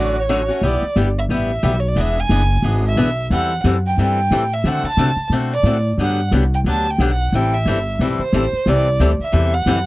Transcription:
Already playing: A1 D3 F#3 A3 C#4 F#4 D5
0.20 C#5
0.29 D3 F#3 A3 C#4 F#4
0.48 A3 C#4 F#4
0.62 B1 G3 B3 E4 G4
0.67 D5
0.82 muted upright bass stroke
0.96 G1 G3 B3 E4 G4
1.19 E5
1.29 A1 G3 B3 E4 G4
1.33 E5
1.63 B1 G3 B3 E4 G4
1.80 C#5
1.88 D5
1.96 E1 E3 B3 D4 G#4
2.01 E5
2.20 G#5
2.29 F#1 E3 B3 D4 G#4
2.62 G#1 E3 B3 D4 G#4
2.87 E5
2.96 B1 E3 B3 D4 G#4
3.30 E2 E3 G3 C4 E4 A4 F#5
3.64 F#2 E3 G3 C4 E4 A4
3.87 G5
3.97 G2 E3 G3 C4 E4 A4 G5
4.31 A2 E3 G3 C4 E4 A4
4.54 E5
4.64 D3 A3 C4 F#4 A4
4.68 F#5
4.83 A5, muted upright bass stroke
4.97 C3 D3 A3 C4 F#4 A4
5.16 muted upright bass stroke
5.30 B2 D3 A3 C4 F#4
5.34 A4
5.53 D5
5.63 A2 D3 A3 C4 F#4 A4
5.98 G2 D3 F#3 B3 D4 G4 F#5
6.31 C2 D3 F#3 B3 D4 G4
6.54 G5
6.64 D2 D3 F#3 B3 D4 G4
6.69 A5
6.91 G5
6.98 B1 D3 F#3 B3 D4 G4
7.13 F#5
7.32 A1 E3 G3 C4 E4 A4 G5
7.54 E5
7.65 G1 E3 G3 C4 E4 A4
7.99 B1 E3 G3 C4 E4 A4
8.19 C5, muted upright bass stroke
8.33 A1 E3 G3 C4 E4 A4
8.53 muted upright bass stroke
8.66 C2 C3 E3 G3 C4 E4 A4 D5
8.99 D2 C3 E3 G3 C4 E4 A4
9.19 E5, muted upright bass stroke
9.32 E2 C3 E3 G3 C4 E4 A4
9.54 F#5
9.66 F#2 C3 E3 G3 C4 E4 A4

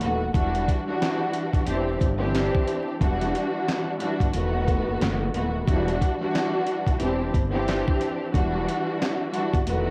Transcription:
0.01 D#1 D#3 E3 A3 B3 F#4, closed hi-hat
0.33 E1 E3 G3 D4 F#4, kick, closed hi-hat
0.55 closed hi-hat
0.68 kick, closed hi-hat
0.87 E3 G3 D4 F#4
1.02 snare, clap, closed hi-hat
1.33 closed hi-hat
1.54 B1, kick, closed hi-hat
1.67 E1 E3 C4 D4 G4, closed hi-hat
2.01 G1, kick, closed hi-hat
2.20 E3 C4 D4 G4
2.35 snare, clap, closed hi-hat
2.55 kick
2.67 closed hi-hat
3.00 E1 E3 G3 D4 F#4, kick, closed hi-hat
3.21 snare, closed hi-hat
3.35 closed hi-hat
3.68 snare, clap, closed hi-hat
3.99 E3 G3 D4 F#4, closed hi-hat
4.20 G1, kick, closed hi-hat
4.33 E1 E2 D#3 A3 B3 F#4, closed hi-hat
4.68 kick, closed hi-hat
4.88 F#1
5.01 F#1, snare, clap, closed hi-hat
5.34 D#1 D#3 E3 A3 B3 F#4, closed hi-hat
5.66 E1 E3 G3 D4 F#4, kick, closed hi-hat
5.88 closed hi-hat
6.01 kick, closed hi-hat
6.20 E3 G3 D4 F#4
6.35 snare, clap, closed hi-hat
6.67 closed hi-hat
6.87 B1, kick, closed hi-hat
7.00 E1 E3 C4 D4 G4, closed hi-hat
7.34 G1, kick, closed hi-hat
7.52 E3 C4 D4 G4
7.68 snare, clap, closed hi-hat
7.88 kick
8.01 closed hi-hat
8.33 E1 E3 G3 D4 F#4, kick, closed hi-hat
8.68 closed hi-hat
9.02 snare, clap, closed hi-hat
9.32 E3 G3 D4 F#4, closed hi-hat
9.53 G1, kick, closed hi-hat
9.67 E1 E2 D#3 A3 B3 F#4, closed hi-hat

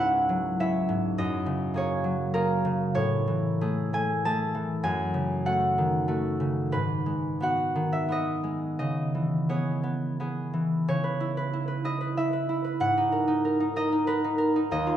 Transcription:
Already playing: C#2 G#2 F#3 E4 G#4 B4 C#5
0.00 C#4 F#5
0.29 F#3
0.60 C#4 E4 E5
0.89 G#2
1.18 F#2 D#5
1.46 C#3
1.74 A#3 G#4 C#5
2.04 F#3
2.34 A#3 G#4 A#4
2.65 C#3
2.94 A2 C#5
3.28 E3
3.61 A3 G#4
3.93 A3 G#5
4.25 A3 G#4 A5
4.55 E3
4.83 F#2 G#5
5.14 C#3
5.45 A3 F#4 F#5
5.78 D#3
6.08 A3 F#4
6.40 C#3
6.72 G#2 B4
7.06 G#3
7.40 B3 F#4 F#5
7.75 D#3
7.93 E5
8.08 B3 F#4 D#5
8.44 G#3
8.79 C#3 D#5
9.15 E3
9.49 B3 G#4 C#5
9.83 B3
10.20 B3 G#4
10.53 E3
10.88 C#3 C#5
11.04 B4
11.20 E4
11.37 B4
11.53 E4
11.68 B4
11.84 E4 D#5
12.01 B4
12.17 E4 E5
12.33 B4
12.49 E4
12.64 B4
12.80 G#2 F#5
12.97 D#4
13.12 A#4
13.28 D#4
13.45 A#4
13.60 D#4
13.76 A#4 D#5
13.92 D#4
14.07 A#4 B4
14.24 D#4
14.38 A#4
14.56 D#4
14.71 D#2 D#5
14.87 F4

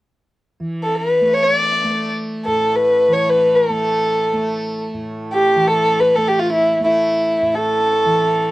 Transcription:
0.60 E3
0.83 A4
0.95 B4
1.21 A3
1.33 C#5
1.43 C#5
1.55 D5
1.84 A3
2.45 A2 A4
2.76 B4
3.08 E3
3.13 C#5
3.29 B4
3.55 A4
3.70 A3
4.33 A3
4.94 A2
5.33 G4
5.56 E3
5.67 A4
6.00 B4
6.16 A3 A4
6.28 G4
6.39 F4
6.52 E4
6.80 A3
6.84 E4
7.42 A2
7.55 A4
8.05 E3

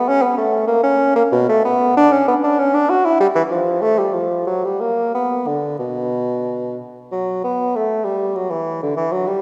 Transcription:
0.08 C#4
0.22 B3
0.38 A3
0.67 A#3
0.83 C#4
1.16 A#3
1.32 B2
1.49 A3
1.65 B3
1.97 D4
2.12 C#4
2.28 B3
2.44 D4
2.59 C#4
2.74 D4
2.90 F#4
3.05 E4
3.20 G3
3.35 E3
3.51 F3
3.81 A3
3.99 G3
4.14 F3
4.47 F#3
4.65 G3
4.81 A#3
5.15 B3
5.47 D3
5.79 B2
7.12 F#3
7.44 B3
7.75 A3
8.05 G3
8.35 F#3
8.50 E3
8.83 D3
8.97 E3
9.12 F#3
9.27 G3

